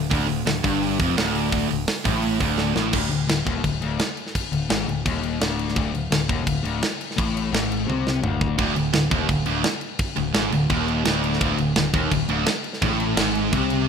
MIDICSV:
0, 0, Header, 1, 4, 480
1, 0, Start_track
1, 0, Tempo, 353149
1, 144, Time_signature, 4, 2, 24, 8
1, 18871, End_track
2, 0, Start_track
2, 0, Title_t, "Distorted electric guitar"
2, 0, Program_c, 0, 30
2, 138, Note_on_c, 0, 38, 120
2, 363, Note_off_c, 0, 38, 0
2, 380, Note_on_c, 0, 38, 69
2, 575, Note_off_c, 0, 38, 0
2, 615, Note_on_c, 0, 38, 79
2, 813, Note_off_c, 0, 38, 0
2, 869, Note_on_c, 0, 43, 98
2, 1341, Note_off_c, 0, 43, 0
2, 1350, Note_on_c, 0, 41, 109
2, 1582, Note_off_c, 0, 41, 0
2, 1597, Note_on_c, 0, 38, 106
2, 2283, Note_off_c, 0, 38, 0
2, 2299, Note_on_c, 0, 38, 66
2, 2496, Note_off_c, 0, 38, 0
2, 2792, Note_on_c, 0, 45, 98
2, 3257, Note_off_c, 0, 45, 0
2, 3262, Note_on_c, 0, 38, 115
2, 3733, Note_off_c, 0, 38, 0
2, 3739, Note_on_c, 0, 45, 98
2, 3978, Note_off_c, 0, 45, 0
2, 3985, Note_on_c, 0, 38, 113
2, 4200, Note_off_c, 0, 38, 0
2, 4216, Note_on_c, 0, 38, 71
2, 4416, Note_off_c, 0, 38, 0
2, 4450, Note_on_c, 0, 38, 76
2, 4653, Note_off_c, 0, 38, 0
2, 4695, Note_on_c, 0, 39, 101
2, 4936, Note_off_c, 0, 39, 0
2, 4942, Note_on_c, 0, 38, 70
2, 5139, Note_off_c, 0, 38, 0
2, 5185, Note_on_c, 0, 38, 110
2, 5422, Note_off_c, 0, 38, 0
2, 6143, Note_on_c, 0, 38, 71
2, 6340, Note_off_c, 0, 38, 0
2, 6377, Note_on_c, 0, 44, 110
2, 6618, Note_off_c, 0, 44, 0
2, 6634, Note_on_c, 0, 38, 71
2, 6826, Note_off_c, 0, 38, 0
2, 6870, Note_on_c, 0, 39, 106
2, 7336, Note_off_c, 0, 39, 0
2, 7342, Note_on_c, 0, 38, 103
2, 7817, Note_off_c, 0, 38, 0
2, 7834, Note_on_c, 0, 38, 114
2, 8055, Note_off_c, 0, 38, 0
2, 8071, Note_on_c, 0, 38, 71
2, 8265, Note_off_c, 0, 38, 0
2, 8303, Note_on_c, 0, 38, 77
2, 8500, Note_off_c, 0, 38, 0
2, 8544, Note_on_c, 0, 39, 97
2, 8761, Note_off_c, 0, 39, 0
2, 8767, Note_on_c, 0, 38, 74
2, 8972, Note_off_c, 0, 38, 0
2, 9009, Note_on_c, 0, 38, 107
2, 9254, Note_off_c, 0, 38, 0
2, 9736, Note_on_c, 0, 45, 109
2, 10212, Note_off_c, 0, 45, 0
2, 10217, Note_on_c, 0, 44, 105
2, 10697, Note_off_c, 0, 44, 0
2, 10705, Note_on_c, 0, 48, 94
2, 11172, Note_off_c, 0, 48, 0
2, 11177, Note_on_c, 0, 38, 100
2, 11641, Note_off_c, 0, 38, 0
2, 11657, Note_on_c, 0, 38, 124
2, 11883, Note_off_c, 0, 38, 0
2, 11899, Note_on_c, 0, 38, 67
2, 12097, Note_off_c, 0, 38, 0
2, 12146, Note_on_c, 0, 38, 78
2, 12340, Note_off_c, 0, 38, 0
2, 12373, Note_on_c, 0, 39, 90
2, 12614, Note_off_c, 0, 39, 0
2, 12624, Note_on_c, 0, 38, 71
2, 12819, Note_off_c, 0, 38, 0
2, 12854, Note_on_c, 0, 38, 118
2, 13094, Note_off_c, 0, 38, 0
2, 13808, Note_on_c, 0, 38, 74
2, 14010, Note_off_c, 0, 38, 0
2, 14051, Note_on_c, 0, 44, 100
2, 14293, Note_off_c, 0, 44, 0
2, 14298, Note_on_c, 0, 38, 71
2, 14495, Note_off_c, 0, 38, 0
2, 14539, Note_on_c, 0, 39, 98
2, 15009, Note_off_c, 0, 39, 0
2, 15014, Note_on_c, 0, 38, 112
2, 15480, Note_off_c, 0, 38, 0
2, 15496, Note_on_c, 0, 38, 127
2, 15734, Note_off_c, 0, 38, 0
2, 15748, Note_on_c, 0, 38, 76
2, 15939, Note_off_c, 0, 38, 0
2, 15994, Note_on_c, 0, 38, 81
2, 16182, Note_off_c, 0, 38, 0
2, 16220, Note_on_c, 0, 39, 106
2, 16456, Note_off_c, 0, 39, 0
2, 16472, Note_on_c, 0, 38, 75
2, 16661, Note_off_c, 0, 38, 0
2, 16703, Note_on_c, 0, 38, 118
2, 16937, Note_off_c, 0, 38, 0
2, 17426, Note_on_c, 0, 45, 120
2, 17898, Note_off_c, 0, 45, 0
2, 17911, Note_on_c, 0, 44, 107
2, 18375, Note_off_c, 0, 44, 0
2, 18380, Note_on_c, 0, 48, 108
2, 18855, Note_off_c, 0, 48, 0
2, 18871, End_track
3, 0, Start_track
3, 0, Title_t, "Picked electric bass"
3, 0, Program_c, 1, 34
3, 151, Note_on_c, 1, 26, 94
3, 372, Note_off_c, 1, 26, 0
3, 399, Note_on_c, 1, 26, 74
3, 617, Note_off_c, 1, 26, 0
3, 643, Note_on_c, 1, 26, 82
3, 859, Note_off_c, 1, 26, 0
3, 870, Note_on_c, 1, 31, 102
3, 1315, Note_off_c, 1, 31, 0
3, 1356, Note_on_c, 1, 29, 98
3, 1575, Note_off_c, 1, 29, 0
3, 1594, Note_on_c, 1, 26, 90
3, 2262, Note_off_c, 1, 26, 0
3, 2332, Note_on_c, 1, 26, 69
3, 2544, Note_off_c, 1, 26, 0
3, 2793, Note_on_c, 1, 33, 96
3, 3238, Note_off_c, 1, 33, 0
3, 3269, Note_on_c, 1, 26, 86
3, 3717, Note_off_c, 1, 26, 0
3, 3745, Note_on_c, 1, 33, 90
3, 3971, Note_off_c, 1, 33, 0
3, 3990, Note_on_c, 1, 26, 82
3, 4214, Note_off_c, 1, 26, 0
3, 4231, Note_on_c, 1, 26, 74
3, 4455, Note_off_c, 1, 26, 0
3, 4469, Note_on_c, 1, 26, 75
3, 4694, Note_off_c, 1, 26, 0
3, 4710, Note_on_c, 1, 27, 94
3, 4934, Note_off_c, 1, 27, 0
3, 4952, Note_on_c, 1, 26, 80
3, 5176, Note_off_c, 1, 26, 0
3, 5214, Note_on_c, 1, 26, 94
3, 5428, Note_off_c, 1, 26, 0
3, 6146, Note_on_c, 1, 26, 77
3, 6373, Note_off_c, 1, 26, 0
3, 6389, Note_on_c, 1, 32, 96
3, 6615, Note_off_c, 1, 32, 0
3, 6633, Note_on_c, 1, 26, 85
3, 6857, Note_off_c, 1, 26, 0
3, 6874, Note_on_c, 1, 27, 101
3, 7321, Note_off_c, 1, 27, 0
3, 7350, Note_on_c, 1, 26, 91
3, 7798, Note_off_c, 1, 26, 0
3, 7833, Note_on_c, 1, 26, 102
3, 8057, Note_off_c, 1, 26, 0
3, 8071, Note_on_c, 1, 26, 80
3, 8289, Note_off_c, 1, 26, 0
3, 8297, Note_on_c, 1, 26, 81
3, 8528, Note_off_c, 1, 26, 0
3, 8549, Note_on_c, 1, 27, 98
3, 8774, Note_off_c, 1, 27, 0
3, 8800, Note_on_c, 1, 26, 87
3, 9020, Note_off_c, 1, 26, 0
3, 9036, Note_on_c, 1, 26, 90
3, 9258, Note_off_c, 1, 26, 0
3, 9768, Note_on_c, 1, 33, 97
3, 10207, Note_off_c, 1, 33, 0
3, 10235, Note_on_c, 1, 32, 93
3, 10680, Note_off_c, 1, 32, 0
3, 10716, Note_on_c, 1, 36, 96
3, 11160, Note_off_c, 1, 36, 0
3, 11202, Note_on_c, 1, 26, 91
3, 11643, Note_off_c, 1, 26, 0
3, 11673, Note_on_c, 1, 26, 83
3, 11895, Note_off_c, 1, 26, 0
3, 11928, Note_on_c, 1, 26, 73
3, 12143, Note_off_c, 1, 26, 0
3, 12166, Note_on_c, 1, 26, 75
3, 12379, Note_off_c, 1, 26, 0
3, 12387, Note_on_c, 1, 27, 95
3, 12612, Note_off_c, 1, 27, 0
3, 12630, Note_on_c, 1, 26, 86
3, 12853, Note_off_c, 1, 26, 0
3, 12874, Note_on_c, 1, 26, 89
3, 13095, Note_off_c, 1, 26, 0
3, 13837, Note_on_c, 1, 26, 78
3, 14056, Note_off_c, 1, 26, 0
3, 14068, Note_on_c, 1, 32, 95
3, 14291, Note_off_c, 1, 32, 0
3, 14311, Note_on_c, 1, 26, 90
3, 14533, Note_off_c, 1, 26, 0
3, 14545, Note_on_c, 1, 27, 91
3, 14992, Note_off_c, 1, 27, 0
3, 15026, Note_on_c, 1, 26, 97
3, 15473, Note_off_c, 1, 26, 0
3, 15510, Note_on_c, 1, 26, 104
3, 15722, Note_off_c, 1, 26, 0
3, 15731, Note_on_c, 1, 26, 79
3, 15961, Note_off_c, 1, 26, 0
3, 15982, Note_on_c, 1, 26, 90
3, 16207, Note_off_c, 1, 26, 0
3, 16222, Note_on_c, 1, 27, 89
3, 16447, Note_off_c, 1, 27, 0
3, 16472, Note_on_c, 1, 26, 84
3, 16689, Note_off_c, 1, 26, 0
3, 16698, Note_on_c, 1, 26, 98
3, 16924, Note_off_c, 1, 26, 0
3, 17423, Note_on_c, 1, 33, 102
3, 17870, Note_off_c, 1, 33, 0
3, 17897, Note_on_c, 1, 32, 109
3, 18347, Note_off_c, 1, 32, 0
3, 18391, Note_on_c, 1, 36, 99
3, 18834, Note_off_c, 1, 36, 0
3, 18871, End_track
4, 0, Start_track
4, 0, Title_t, "Drums"
4, 154, Note_on_c, 9, 36, 114
4, 155, Note_on_c, 9, 46, 83
4, 290, Note_off_c, 9, 36, 0
4, 291, Note_off_c, 9, 46, 0
4, 395, Note_on_c, 9, 46, 60
4, 531, Note_off_c, 9, 46, 0
4, 635, Note_on_c, 9, 46, 73
4, 641, Note_on_c, 9, 38, 115
4, 771, Note_off_c, 9, 46, 0
4, 777, Note_off_c, 9, 38, 0
4, 873, Note_on_c, 9, 36, 95
4, 873, Note_on_c, 9, 46, 64
4, 1009, Note_off_c, 9, 36, 0
4, 1009, Note_off_c, 9, 46, 0
4, 1122, Note_on_c, 9, 46, 79
4, 1258, Note_off_c, 9, 46, 0
4, 1355, Note_on_c, 9, 36, 116
4, 1360, Note_on_c, 9, 46, 61
4, 1491, Note_off_c, 9, 36, 0
4, 1496, Note_off_c, 9, 46, 0
4, 1600, Note_on_c, 9, 46, 89
4, 1605, Note_on_c, 9, 38, 104
4, 1735, Note_off_c, 9, 46, 0
4, 1741, Note_off_c, 9, 38, 0
4, 1835, Note_on_c, 9, 46, 66
4, 1971, Note_off_c, 9, 46, 0
4, 2067, Note_on_c, 9, 46, 82
4, 2072, Note_on_c, 9, 36, 105
4, 2203, Note_off_c, 9, 46, 0
4, 2208, Note_off_c, 9, 36, 0
4, 2316, Note_on_c, 9, 46, 67
4, 2452, Note_off_c, 9, 46, 0
4, 2548, Note_on_c, 9, 46, 89
4, 2554, Note_on_c, 9, 38, 104
4, 2684, Note_off_c, 9, 46, 0
4, 2690, Note_off_c, 9, 38, 0
4, 2789, Note_on_c, 9, 46, 58
4, 2791, Note_on_c, 9, 36, 111
4, 2925, Note_off_c, 9, 46, 0
4, 2927, Note_off_c, 9, 36, 0
4, 3022, Note_on_c, 9, 46, 86
4, 3158, Note_off_c, 9, 46, 0
4, 3261, Note_on_c, 9, 46, 63
4, 3269, Note_on_c, 9, 36, 102
4, 3397, Note_off_c, 9, 46, 0
4, 3405, Note_off_c, 9, 36, 0
4, 3504, Note_on_c, 9, 38, 69
4, 3640, Note_off_c, 9, 38, 0
4, 3749, Note_on_c, 9, 38, 92
4, 3885, Note_off_c, 9, 38, 0
4, 3979, Note_on_c, 9, 49, 122
4, 3979, Note_on_c, 9, 57, 83
4, 3988, Note_on_c, 9, 36, 111
4, 4115, Note_off_c, 9, 49, 0
4, 4115, Note_off_c, 9, 57, 0
4, 4124, Note_off_c, 9, 36, 0
4, 4232, Note_on_c, 9, 57, 65
4, 4368, Note_off_c, 9, 57, 0
4, 4474, Note_on_c, 9, 57, 82
4, 4479, Note_on_c, 9, 38, 114
4, 4610, Note_off_c, 9, 57, 0
4, 4615, Note_off_c, 9, 38, 0
4, 4712, Note_on_c, 9, 36, 90
4, 4718, Note_on_c, 9, 57, 58
4, 4848, Note_off_c, 9, 36, 0
4, 4854, Note_off_c, 9, 57, 0
4, 4947, Note_on_c, 9, 57, 82
4, 4949, Note_on_c, 9, 36, 86
4, 5083, Note_off_c, 9, 57, 0
4, 5085, Note_off_c, 9, 36, 0
4, 5188, Note_on_c, 9, 57, 61
4, 5324, Note_off_c, 9, 57, 0
4, 5428, Note_on_c, 9, 57, 78
4, 5433, Note_on_c, 9, 38, 107
4, 5563, Note_off_c, 9, 57, 0
4, 5569, Note_off_c, 9, 38, 0
4, 5668, Note_on_c, 9, 57, 56
4, 5798, Note_on_c, 9, 38, 32
4, 5804, Note_off_c, 9, 57, 0
4, 5915, Note_on_c, 9, 36, 100
4, 5922, Note_on_c, 9, 57, 92
4, 5934, Note_off_c, 9, 38, 0
4, 6051, Note_off_c, 9, 36, 0
4, 6058, Note_off_c, 9, 57, 0
4, 6153, Note_on_c, 9, 57, 69
4, 6288, Note_off_c, 9, 57, 0
4, 6387, Note_on_c, 9, 57, 81
4, 6393, Note_on_c, 9, 38, 106
4, 6523, Note_off_c, 9, 57, 0
4, 6529, Note_off_c, 9, 38, 0
4, 6645, Note_on_c, 9, 57, 57
4, 6781, Note_off_c, 9, 57, 0
4, 6874, Note_on_c, 9, 36, 99
4, 6874, Note_on_c, 9, 57, 83
4, 7010, Note_off_c, 9, 36, 0
4, 7010, Note_off_c, 9, 57, 0
4, 7113, Note_on_c, 9, 57, 62
4, 7249, Note_off_c, 9, 57, 0
4, 7356, Note_on_c, 9, 57, 84
4, 7361, Note_on_c, 9, 38, 115
4, 7492, Note_off_c, 9, 57, 0
4, 7497, Note_off_c, 9, 38, 0
4, 7600, Note_on_c, 9, 57, 65
4, 7724, Note_on_c, 9, 38, 35
4, 7736, Note_off_c, 9, 57, 0
4, 7833, Note_on_c, 9, 36, 108
4, 7833, Note_on_c, 9, 57, 76
4, 7859, Note_off_c, 9, 38, 0
4, 7969, Note_off_c, 9, 36, 0
4, 7969, Note_off_c, 9, 57, 0
4, 8081, Note_on_c, 9, 57, 56
4, 8217, Note_off_c, 9, 57, 0
4, 8316, Note_on_c, 9, 57, 80
4, 8322, Note_on_c, 9, 38, 120
4, 8452, Note_off_c, 9, 57, 0
4, 8457, Note_off_c, 9, 38, 0
4, 8554, Note_on_c, 9, 36, 107
4, 8556, Note_on_c, 9, 57, 53
4, 8690, Note_off_c, 9, 36, 0
4, 8692, Note_off_c, 9, 57, 0
4, 8793, Note_on_c, 9, 36, 92
4, 8797, Note_on_c, 9, 57, 83
4, 8929, Note_off_c, 9, 36, 0
4, 8933, Note_off_c, 9, 57, 0
4, 9042, Note_on_c, 9, 57, 63
4, 9178, Note_off_c, 9, 57, 0
4, 9275, Note_on_c, 9, 57, 79
4, 9281, Note_on_c, 9, 38, 105
4, 9411, Note_off_c, 9, 57, 0
4, 9417, Note_off_c, 9, 38, 0
4, 9524, Note_on_c, 9, 57, 65
4, 9660, Note_off_c, 9, 57, 0
4, 9662, Note_on_c, 9, 38, 33
4, 9763, Note_on_c, 9, 36, 109
4, 9774, Note_on_c, 9, 57, 92
4, 9798, Note_off_c, 9, 38, 0
4, 9899, Note_off_c, 9, 36, 0
4, 9910, Note_off_c, 9, 57, 0
4, 10015, Note_on_c, 9, 57, 72
4, 10151, Note_off_c, 9, 57, 0
4, 10250, Note_on_c, 9, 57, 83
4, 10256, Note_on_c, 9, 38, 113
4, 10386, Note_off_c, 9, 57, 0
4, 10392, Note_off_c, 9, 38, 0
4, 10488, Note_on_c, 9, 57, 65
4, 10624, Note_off_c, 9, 57, 0
4, 10733, Note_on_c, 9, 48, 67
4, 10868, Note_off_c, 9, 48, 0
4, 10967, Note_on_c, 9, 38, 69
4, 11103, Note_off_c, 9, 38, 0
4, 11194, Note_on_c, 9, 45, 101
4, 11329, Note_off_c, 9, 45, 0
4, 11434, Note_on_c, 9, 36, 94
4, 11570, Note_off_c, 9, 36, 0
4, 11670, Note_on_c, 9, 57, 93
4, 11671, Note_on_c, 9, 36, 115
4, 11806, Note_off_c, 9, 57, 0
4, 11807, Note_off_c, 9, 36, 0
4, 11907, Note_on_c, 9, 57, 67
4, 12043, Note_off_c, 9, 57, 0
4, 12141, Note_on_c, 9, 57, 74
4, 12146, Note_on_c, 9, 38, 113
4, 12277, Note_off_c, 9, 57, 0
4, 12282, Note_off_c, 9, 38, 0
4, 12385, Note_on_c, 9, 57, 59
4, 12387, Note_on_c, 9, 36, 108
4, 12521, Note_off_c, 9, 57, 0
4, 12523, Note_off_c, 9, 36, 0
4, 12626, Note_on_c, 9, 36, 90
4, 12626, Note_on_c, 9, 57, 74
4, 12762, Note_off_c, 9, 36, 0
4, 12762, Note_off_c, 9, 57, 0
4, 12852, Note_on_c, 9, 57, 67
4, 12988, Note_off_c, 9, 57, 0
4, 13100, Note_on_c, 9, 57, 82
4, 13106, Note_on_c, 9, 38, 116
4, 13236, Note_off_c, 9, 57, 0
4, 13242, Note_off_c, 9, 38, 0
4, 13333, Note_on_c, 9, 57, 60
4, 13469, Note_off_c, 9, 57, 0
4, 13575, Note_on_c, 9, 57, 91
4, 13582, Note_on_c, 9, 36, 121
4, 13711, Note_off_c, 9, 57, 0
4, 13718, Note_off_c, 9, 36, 0
4, 13813, Note_on_c, 9, 57, 68
4, 13949, Note_off_c, 9, 57, 0
4, 14056, Note_on_c, 9, 57, 80
4, 14062, Note_on_c, 9, 38, 113
4, 14192, Note_off_c, 9, 57, 0
4, 14198, Note_off_c, 9, 38, 0
4, 14303, Note_on_c, 9, 57, 67
4, 14439, Note_off_c, 9, 57, 0
4, 14540, Note_on_c, 9, 57, 88
4, 14545, Note_on_c, 9, 36, 100
4, 14676, Note_off_c, 9, 57, 0
4, 14680, Note_off_c, 9, 36, 0
4, 14790, Note_on_c, 9, 57, 60
4, 14926, Note_off_c, 9, 57, 0
4, 15022, Note_on_c, 9, 57, 81
4, 15027, Note_on_c, 9, 38, 114
4, 15158, Note_off_c, 9, 57, 0
4, 15163, Note_off_c, 9, 38, 0
4, 15272, Note_on_c, 9, 57, 68
4, 15401, Note_on_c, 9, 38, 37
4, 15408, Note_off_c, 9, 57, 0
4, 15509, Note_on_c, 9, 36, 119
4, 15512, Note_on_c, 9, 57, 86
4, 15537, Note_off_c, 9, 38, 0
4, 15645, Note_off_c, 9, 36, 0
4, 15648, Note_off_c, 9, 57, 0
4, 15744, Note_on_c, 9, 57, 60
4, 15880, Note_off_c, 9, 57, 0
4, 15980, Note_on_c, 9, 57, 77
4, 15985, Note_on_c, 9, 38, 102
4, 16116, Note_off_c, 9, 57, 0
4, 16121, Note_off_c, 9, 38, 0
4, 16220, Note_on_c, 9, 57, 58
4, 16226, Note_on_c, 9, 36, 110
4, 16356, Note_off_c, 9, 57, 0
4, 16362, Note_off_c, 9, 36, 0
4, 16465, Note_on_c, 9, 57, 85
4, 16467, Note_on_c, 9, 36, 90
4, 16601, Note_off_c, 9, 57, 0
4, 16603, Note_off_c, 9, 36, 0
4, 16699, Note_on_c, 9, 57, 65
4, 16835, Note_off_c, 9, 57, 0
4, 16939, Note_on_c, 9, 57, 81
4, 16944, Note_on_c, 9, 38, 118
4, 17075, Note_off_c, 9, 57, 0
4, 17080, Note_off_c, 9, 38, 0
4, 17180, Note_on_c, 9, 57, 64
4, 17306, Note_on_c, 9, 38, 34
4, 17316, Note_off_c, 9, 57, 0
4, 17423, Note_on_c, 9, 57, 90
4, 17425, Note_on_c, 9, 36, 105
4, 17442, Note_off_c, 9, 38, 0
4, 17559, Note_off_c, 9, 57, 0
4, 17561, Note_off_c, 9, 36, 0
4, 17668, Note_on_c, 9, 57, 65
4, 17804, Note_off_c, 9, 57, 0
4, 17900, Note_on_c, 9, 57, 90
4, 17905, Note_on_c, 9, 38, 117
4, 18036, Note_off_c, 9, 57, 0
4, 18041, Note_off_c, 9, 38, 0
4, 18148, Note_on_c, 9, 57, 57
4, 18284, Note_off_c, 9, 57, 0
4, 18386, Note_on_c, 9, 57, 92
4, 18387, Note_on_c, 9, 36, 109
4, 18522, Note_off_c, 9, 57, 0
4, 18523, Note_off_c, 9, 36, 0
4, 18622, Note_on_c, 9, 57, 75
4, 18758, Note_off_c, 9, 57, 0
4, 18871, End_track
0, 0, End_of_file